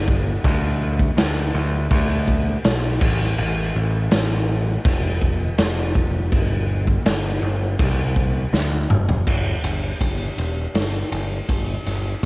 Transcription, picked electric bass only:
0.00 0.36 G1 medium
0.44 1.09 D2 loud
1.17 1.50 D2 medium
1.54 1.87 D2 loud
1.91 2.56 D2 medium
2.65 2.97 B1 medium
3.01 3.34 A1 medium
3.38 3.71 A1 medium
3.75 4.08 A1 medium
4.11 4.76 A1 medium
4.85 5.50 F1 medium
5.58 6.32 F1 loud
6.32 6.97 G1 loud
7.06 7.38 G1 loud
7.42 7.75 G1 loud
7.80 8.45 C2 medium
8.53 8.86 D2 loud
8.89 9.22 F#1 medium
9.27 9.54 G1 medium
9.64 9.91 G1 medium
10.01 10.28 G1 medium
10.38 10.65 E1 medium
10.74 11.02 G1 medium
11.12 11.39 G1 medium
11.49 11.76 G1 medium
11.86 12.14 G1 medium

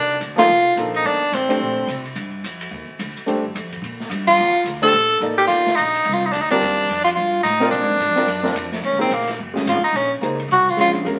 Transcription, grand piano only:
0.36 0.47 F3 medium
0.36 0.47 A#3 medium
0.36 0.48 D#4 medium
0.36 0.47 A4 medium
0.77 1.18 F3 medium
0.77 1.18 A#3 medium
0.77 1.19 D#4 soft
0.77 1.19 A4 medium
1.49 1.85 A3 medium
1.49 1.86 D4 medium
1.49 1.86 G4 medium
1.49 1.86 C5 medium
3.26 3.42 A3 medium
3.26 3.42 D4 medium
3.26 3.43 G4 medium
3.26 3.43 C5 medium
4.82 4.92 A3 medium
4.82 4.92 D4 medium
4.82 4.93 G4 medium
4.82 4.93 C5 medium
5.21 5.63 A#3 medium
5.21 5.63 D#4 medium
5.21 5.63 A4 medium
5.21 5.64 D5 medium
6.50 6.87 G3 medium
6.50 6.87 C4 medium
6.50 6.87 F4 medium
6.50 6.87 A#4 medium
7.60 7.97 C4 medium
7.60 7.98 F4 medium
7.60 7.98 A#4 medium
7.60 7.98 D5 medium
8.16 8.26 C4 medium
8.16 8.26 F4 medium
8.16 8.27 A#4 medium
8.16 8.27 D5 medium
8.43 8.53 C4 medium
8.43 8.54 F4 medium
8.43 8.54 A#4 medium
8.43 8.54 D5 medium
8.98 9.09 A#3 medium
8.98 9.09 D#4 medium
8.98 9.09 G#4 medium
8.98 9.10 C5 medium
9.54 9.64 G#3 medium
9.54 9.65 C#4 medium
9.54 9.65 F#4 medium
9.54 9.65 G#4 medium
10.21 10.37 A#3 medium
10.21 10.37 D#4 medium
10.21 10.38 G#4 soft
10.21 10.38 C5 medium
10.77 10.93 G#3 medium
10.77 10.93 C#4 soft
10.77 10.94 F#4 medium
10.77 10.94 C#5 medium
11.05 11.19 G#3 medium
11.05 11.19 C#4 medium
11.05 11.19 F#4 soft
11.05 11.19 A#4 medium

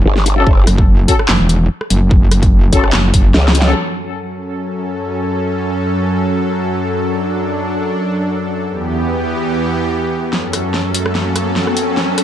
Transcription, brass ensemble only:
0.37 0.46 C#4 medium
0.37 0.46 F#4 medium
0.37 0.46 A4 loud
1.08 1.14 C#4 loud
1.08 1.14 F#4 medium
1.08 1.14 A4 loud
2.73 2.83 C#4 medium
2.73 2.83 F#4 medium
2.73 2.83 A4 medium
3.66 3.74 C#4 medium
3.66 3.74 F#4 medium
3.66 3.74 A4 loud

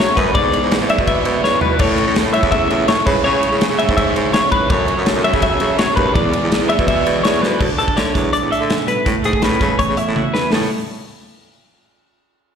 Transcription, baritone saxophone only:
0.17 0.36 F#2 loud
0.35 0.57 G#2 loud
0.62 0.77 G#2 medium
0.81 0.95 G#2 medium
0.98 1.21 B2 medium
1.25 1.40 B2 loud
1.43 1.60 C#3 medium
1.61 1.81 B2 medium
1.80 2.02 A2 loud
2.07 2.22 A2 medium
2.25 2.40 A2 medium
2.43 2.66 E2 medium
2.70 2.85 E2 loud
2.88 2.96 A2 medium
3.07 3.14 C#3 loud
3.24 3.47 C#3 loud
3.52 3.67 C#3 medium
3.70 3.85 C#3 medium
3.89 4.11 G#2 loud
4.16 4.31 G#2 loud
4.34 4.41 C#3 medium
4.70 4.93 F#2 loud
4.97 5.12 F#2 medium
5.15 5.30 F#2 medium
5.34 5.56 C#3 loud
5.60 5.76 C#3 loud
5.79 5.86 F#3 medium
5.97 6.17 D#2 loud
6.16 6.38 E2 medium
6.43 6.58 E2 medium
6.60 6.75 E2 medium
6.79 7.01 B2 medium
7.06 7.21 B2 loud
7.24 7.40 E2 medium
7.42 7.59 D2 medium
7.61 7.68 D2 loud
7.78 7.86 C#2 medium
7.96 8.12 D3 medium
8.15 8.30 E2 loud
8.42 8.50 E2 medium
8.60 8.76 D3 medium
9.07 9.14 A2 loud
9.25 9.32 G#2 medium
9.43 9.58 A2 medium
9.61 9.76 C#3 medium
9.89 9.96 C#3 medium
10.08 10.22 A2 medium
10.53 10.70 A2 medium

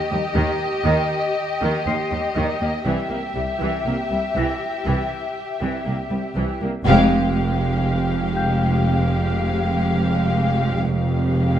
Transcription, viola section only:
0.11 0.19 G3 soft
0.35 0.59 D#3 medium
0.86 1.09 D#3 medium
1.61 1.84 D#3 soft
1.86 1.94 A#3 soft
2.11 2.19 G3 soft
2.35 2.59 D#3 soft
2.60 2.68 A#3 soft
2.84 3.08 E3 soft
3.09 3.17 A#3 soft
3.35 3.43 G3 soft
3.60 3.84 E3 soft
3.86 3.94 A#3 soft
4.10 4.18 G3 soft
4.35 4.59 E3 soft
4.85 5.09 E3 soft
5.61 5.84 E3 soft
5.85 5.93 A#3 soft
6.10 6.18 G3 soft
6.36 6.59 E3 soft
6.61 6.69 A#3 soft
6.86 10.82 G#3 medium
10.85 11.60 G#3 medium

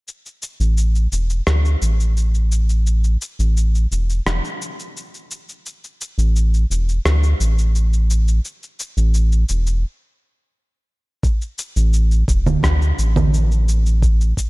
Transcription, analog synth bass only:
0.60 1.07 A1 medium
1.12 1.41 E1 medium
1.47 1.76 D2 medium
1.82 3.17 A1 medium
3.39 3.87 A1 medium
3.91 4.20 E1 medium
4.26 4.41 E1 medium
6.18 6.65 A1 medium
6.70 6.99 E1 medium
7.05 7.34 D2 medium
7.40 8.40 A1 medium
8.97 9.45 A1 loud
9.50 9.84 E1 medium
11.76 12.24 A1 medium
12.28 12.58 E1 medium
12.63 12.92 D2 medium
12.99 14.33 A1 medium

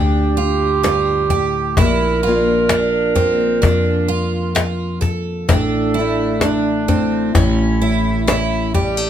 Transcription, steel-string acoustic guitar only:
0.00 0.84 G2 medium
0.00 1.36 A#3 medium
0.00 2.27 D4 medium
0.00 1.73 G4 medium
0.85 1.31 G2 medium
1.33 1.79 A2 medium
1.80 5.45 A#2 medium
2.27 3.19 A#3 medium
2.27 2.72 D4 medium
2.27 3.64 F4 medium
2.73 5.46 D4 medium
3.20 5.46 A#3 medium
3.65 5.45 F4 medium
5.51 7.33 A2 medium
5.99 6.88 A3 medium
5.99 6.43 D4 medium
5.99 7.81 E4 medium
6.44 7.31 D4 medium
6.90 7.30 A3 medium
7.34 9.10 A2 medium
7.82 8.74 A3 medium
7.82 8.28 C#4 medium
7.82 9.10 E4 medium
8.29 9.10 C#4 medium
8.75 8.97 G3 medium
8.97 9.10 A3 soft

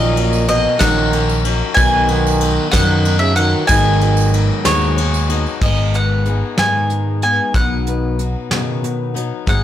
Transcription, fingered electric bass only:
0.00 0.65 A#1 medium
0.81 1.61 A#1 medium
1.77 2.57 B1 medium
2.73 3.53 F#2 medium
3.69 4.49 G#1 medium
4.65 5.45 D#2 medium
5.61 6.42 G#1 medium
6.58 7.38 G#2 medium
7.54 8.34 B1 medium
8.51 9.31 B2 medium
9.48 9.64 G#1 medium

